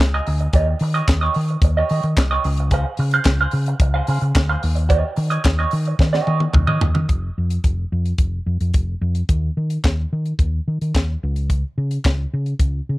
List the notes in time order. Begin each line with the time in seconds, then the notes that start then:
0.00 C#2, muted clean electric guitar stroke, kick, snare, clap
0.14 F4 G#4 D#5
0.27 D2, muted clean electric guitar stroke, open hi-hat
0.40 muted clean electric guitar stroke, closed hi-hat
0.53 D#2 G4 C#5 D#5, kick, closed hi-hat
0.68 muted clean electric guitar stroke
0.79 D#3, muted clean electric guitar stroke, open hi-hat
0.94 G4 C#5 D#5, closed hi-hat
1.08 D#2, muted clean electric guitar stroke, kick, snare, clap, closed hi-hat
1.21 G4 C#5 D#5
1.34 D#3, muted clean electric guitar stroke, open hi-hat
1.48 muted clean electric guitar stroke, closed hi-hat
1.62 D#2, muted clean electric guitar stroke, kick, closed hi-hat
1.77 G4 C#5 D#5
1.89 D#3 G4 C#5 D#5, open hi-hat
2.03 D#3, muted clean electric guitar stroke, closed hi-hat
2.16 C2, muted clean electric guitar stroke, kick, snare, clap, closed hi-hat
2.31 G4 C#5 D#5
2.44 C#2, muted clean electric guitar stroke, open hi-hat
2.57 muted clean electric guitar stroke, closed hi-hat
2.71 G#4 C5 F5, kick, closed hi-hat
2.86 muted clean electric guitar stroke
2.97 C#3, muted clean electric guitar stroke, open hi-hat
3.11 G#4 C5 F5, closed hi-hat
3.24 C#2, muted clean electric guitar stroke, kick, snare, clap, closed hi-hat
3.41 G#4 C5 F5
3.51 C#3, muted clean electric guitar stroke, open hi-hat
3.66 muted clean electric guitar stroke, closed hi-hat
3.80 C#2, muted clean electric guitar stroke, kick, closed hi-hat
3.94 G#4 C5 F5
4.07 C#3 G#4 C5 F5, open hi-hat
4.21 C#3, muted clean electric guitar stroke, closed hi-hat
4.35 D2, muted clean electric guitar stroke, kick, snare, clap, closed hi-hat
4.49 G#4 C5 F5
4.62 D#2, muted clean electric guitar stroke, open hi-hat
4.75 muted clean electric guitar stroke, closed hi-hat
4.89 G4 C#5 D#5, kick, closed hi-hat
5.03 muted clean electric guitar stroke
5.16 D#3, muted clean electric guitar stroke, open hi-hat
5.30 G4 C#5 D#5, closed hi-hat
5.44 D#2, muted clean electric guitar stroke, kick, snare, clap, closed hi-hat
5.59 G4 C#5 D#5
5.71 D#3, muted clean electric guitar stroke, open hi-hat
5.85 muted clean electric guitar stroke, closed hi-hat
5.99 D#3, muted clean electric guitar stroke, kick, snare
6.13 G4 C#5 D#5, snare
6.27 D#3 G4 C#5 D#5, high tom
6.40 muted clean electric guitar stroke, high tom
6.53 D#2, muted clean electric guitar stroke, kick, mid tom
6.67 D#3 G4 C#5 D#5, mid tom
6.81 D#2, floor tom
6.95 D#3, muted clean electric guitar stroke, floor tom
7.09 F1, kick, closed hi-hat
7.38 F2
7.50 closed hi-hat
7.64 F1, kick, closed hi-hat
7.92 F2
8.05 closed hi-hat
8.18 F1, kick, closed hi-hat
8.46 F2
8.61 F2, closed hi-hat
8.74 F1, kick, closed hi-hat
9.01 F2
9.15 closed hi-hat
9.29 D#2, kick, closed hi-hat
9.57 D#3
9.70 closed hi-hat
9.84 D#2, kick, snare, clap, closed hi-hat
10.13 D#3
10.25 closed hi-hat
10.39 D#2, kick, closed hi-hat
10.68 D#3
10.81 D#3, closed hi-hat
10.95 D#2, kick, snare, clap, closed hi-hat
11.23 C#2
11.36 closed hi-hat
11.50 kick, closed hi-hat
11.78 C#3
11.91 closed hi-hat
12.04 C#2, kick, snare, clap, closed hi-hat
12.34 C#3
12.46 closed hi-hat
12.60 C#2, kick, closed hi-hat
12.89 C#3